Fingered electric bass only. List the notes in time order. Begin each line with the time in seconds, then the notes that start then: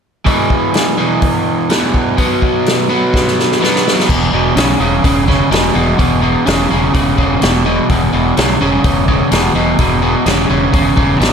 4.09 E1
4.33 E1
4.56 B1
4.80 E1
5.04 E1
5.51 E1
5.75 E1
5.99 E1
6.48 E1
6.72 E1
6.94 E1
7.18 E1
7.43 E1
7.90 E1
8.14 E1
8.38 B1
8.61 E1
8.84 E1
9.32 E1
9.55 E1
9.79 E1
10.26 E1
10.50 E1
10.74 E1
10.97 E1
11.20 G#1